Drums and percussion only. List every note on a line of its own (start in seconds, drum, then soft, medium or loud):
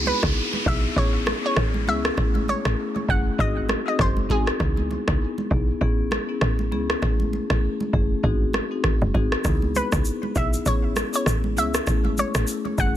0.06 high conga medium
0.23 kick medium
0.23 cross-stick loud
0.53 high conga medium
0.66 kick medium
0.96 kick medium
1.26 cross-stick medium
1.26 high conga medium
1.56 cross-stick medium
1.56 low conga medium
1.74 high conga medium
1.87 high conga medium
2.05 cross-stick medium
2.17 kick loud
2.17 cross-stick medium
2.17 low conga medium
2.35 high conga medium
2.48 high conga medium
2.65 cross-stick loud
2.96 high conga medium
3.09 kick medium
3.39 kick medium
3.69 cross-stick medium
3.69 high conga medium
3.99 kick medium
3.99 cross-stick medium
3.99 low conga medium
4.17 high conga medium
4.30 kick medium
4.30 high conga medium
4.47 cross-stick medium
4.60 kick loud
4.60 cross-stick medium
4.60 low conga medium
4.77 high conga medium
4.91 high conga medium
5.08 kick medium
5.08 cross-stick medium
5.38 high conga medium
5.51 kick medium
5.81 kick medium
6.11 cross-stick medium
6.11 high conga medium
6.41 cross-stick medium
6.41 low conga medium
6.59 high conga medium
6.72 high conga medium
6.90 cross-stick medium
7.02 kick loud
7.02 cross-stick medium
7.02 low conga medium
7.20 high conga medium
7.33 high conga medium
7.50 kick medium
7.50 cross-stick medium
7.80 high conga medium
7.93 kick medium
8.24 kick medium
8.53 cross-stick medium
8.53 high conga medium
8.84 kick medium
8.84 cross-stick medium
8.84 low conga medium
9.02 high conga medium
9.14 kick medium
9.14 high conga medium
9.32 cross-stick medium
9.45 kick loud
9.45 cross-stick medium
9.45 low conga medium
9.45 shaker medium
9.62 high conga medium
9.75 high conga medium
9.75 shaker soft
9.92 kick medium
9.92 cross-stick medium
9.92 shaker medium
10.05 shaker medium
10.23 high conga medium
10.36 kick medium
10.36 shaker medium
10.54 shaker medium
10.66 kick medium
10.66 shaker medium
10.96 cross-stick medium
10.96 high conga medium
10.96 shaker medium
11.14 shaker medium
11.26 cross-stick medium
11.26 low conga medium
11.26 shaker medium
11.44 high conga medium
11.57 high conga medium
11.57 shaker soft
11.74 cross-stick medium
11.74 shaker medium
11.87 kick loud
11.87 cross-stick medium
11.87 low conga medium
11.87 shaker medium
12.05 high conga medium
12.18 high conga medium
12.18 shaker soft
12.35 cross-stick loud
12.35 shaker medium
12.47 shaker medium
12.65 high conga medium
12.78 kick medium
12.78 shaker medium